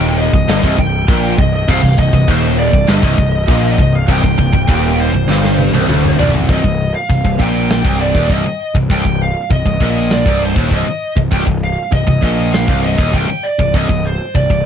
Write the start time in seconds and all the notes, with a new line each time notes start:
Already playing: D#1 D#2 G5
0.19 D#5
0.33 C1 C2, kick
0.48 G1 G2, snare, china
0.63 C1 C2, kick
0.78 C1 C2 G5, kick
1.08 A#1 A#2, kick, china
1.38 C1 C2 D#5, kick
1.54 D#5
1.68 C1 C2 F5, kick, china, crash
1.83 C1 C2, kick
1.98 C1 C2 D#5, kick
2.13 C1 C2, kick
2.27 D#1 D#2 C5, kick, china
2.58 D5
2.73 C1 C2, kick
2.87 G1 G2 D#5, snare, china
3.03 C1 C2, kick
3.18 C1 C2, kick
3.48 A#1 A#2, kick, china
3.78 C1 C2 D#5, kick
3.95 F5
4.08 C1 C2 G5, kick, china
4.23 C1 C2, kick
4.38 C1 C2, kick
4.53 C1 C2, kick
4.68 D#1 D#2, kick, china
5.00 C5
5.13 C1 C2
5.27 G1 G2, snare
5.45 snare
5.59 high tom
5.73 C1 C2, high tom
5.88 D1 D2, mid tom
6.04 mid tom
6.18 C1 C2 D5, floor tom
6.34 floor tom
6.49 C1 C2 D#5, kick, open hi-hat
6.64 C1 C2, kick
6.95 F5
7.10 C1 C2, kick, open hi-hat
7.24 C1 C2, kick
7.39 A#1 A#2 G5, kick
7.69 snare, open hi-hat
7.85 C1 C2, kick
8.01 D5
8.15 D#1 D#2, kick
8.29 C1 C2 D#5, kick, open hi-hat
8.46 muted distorted electric guitar stroke, muted picked electric bass stroke
8.75 C1 C2, kick
8.90 C1 C2 G5, kick, open hi-hat
9.05 C1 C2, kick
9.22 F5
9.50 C1 C2 D#5, kick, open hi-hat
9.66 C1 C2, kick
9.80 A#1 A#2 D#5, kick
10.10 D5, snare, open hi-hat
10.26 C1 C2, kick
10.44 C5
10.56 D#1 D#2, kick
10.71 C1 C2 D#5, kick, open hi-hat
10.86 muted picked electric bass stroke, muted distorted electric guitar stroke
11.16 C1 C2, kick
11.32 C1 C2 G5, kick, open hi-hat
11.46 C1 C2, kick
11.64 F5
11.92 C1 C2 D#5, kick, open hi-hat
12.07 C1 C2, kick
12.23 A#1 A#2 D#5, kick
12.53 F5, snare, open hi-hat
12.68 C1 C2, kick
12.84 D#5
12.98 D#1 D#2, kick
13.13 C1 C2 G5, kick, open hi-hat
13.29 muted picked electric bass stroke, muted distorted electric guitar stroke
13.43 D5
13.59 C1 C2, kick
13.74 C1 C2 D#5, kick, open hi-hat
13.89 C1 C2, kick
14.05 C5
14.35 C1 C2 D5, kick, open hi-hat
14.50 C1 C2, kick